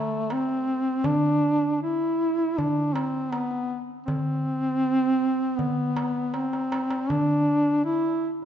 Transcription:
0.00 0.34 A3 medium
0.30 1.08 C4 medium
0.30 darbuka tek medium
0.68 darbuka ka soft
1.04 1.81 D4 loud
1.04 darbuka dum loud
1.83 2.59 E4 medium
2.39 darbuka ka soft
2.58 2.95 D4 medium
2.58 darbuka dum medium
2.78 darbuka ka soft
2.94 3.33 C4 medium
2.94 darbuka tek medium
3.32 3.80 B3 medium
3.32 darbuka tek medium
3.51 darbuka ka soft
3.70 darbuka ka soft
4.07 5.59 C4 loud
4.07 darbuka dum loud
4.84 darbuka ka soft
5.22 darbuka ka soft
5.40 darbuka ka soft
5.58 6.37 B3 medium
5.58 darbuka dum medium
5.97 darbuka tek medium
6.34 7.12 C4 medium
6.34 darbuka tek soft
6.53 darbuka ka medium
6.72 darbuka tek medium
6.91 darbuka ka medium
7.10 7.84 D4 loud
7.10 darbuka dum medium
7.85 8.29 E4 medium

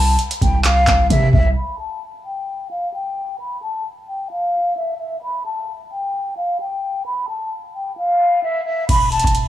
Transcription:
0.00 0.17 C2 loud
0.00 0.17 A5 medium
0.19 closed hi-hat medium
0.31 closed hi-hat medium
0.42 0.86 C2 loud
0.42 0.63 G5 medium
0.42 kick loud
0.42 closed hi-hat medium
0.64 1.08 F5 medium
0.64 clap loud
0.64 closed hi-hat medium
0.87 1.09 C2 loud
0.87 kick loud
0.87 clap medium
0.87 closed hi-hat medium
1.10 1.32 C3 loud
1.10 1.31 E5 medium
1.10 kick medium
1.10 closed hi-hat medium
1.33 1.55 C2 loud
1.33 1.54 E5 medium
1.33 kick loud
1.56 1.77 B5 loud
1.79 2.00 A5 medium
2.25 2.68 G5 medium
2.71 2.92 F5 medium
2.93 3.37 G5 medium
3.40 3.60 B5 medium
3.62 3.83 A5 medium
4.08 4.29 G5 medium
4.31 4.74 F5 medium
4.77 4.98 E5 medium
5.00 5.21 E5 medium
5.22 5.43 B5 loud
5.46 5.67 A5 medium
5.91 6.34 G5 medium
6.37 6.58 F5 medium
6.60 7.03 G5 medium
7.06 7.27 B5 loud
7.29 7.50 A5 medium
7.74 7.95 G5 medium
7.97 8.40 F5 medium
8.43 8.64 E5 medium
8.66 8.87 E5 medium
8.89 9.23 E1 loud
8.89 9.10 B5 loud
8.89 kick loud
8.89 closed hi-hat medium
8.89 crash loud
9.12 9.33 A5 medium
9.12 closed hi-hat soft
9.20 closed hi-hat medium
9.24 9.48 E1 loud
9.24 kick loud
9.24 closed hi-hat medium
9.35 closed hi-hat medium

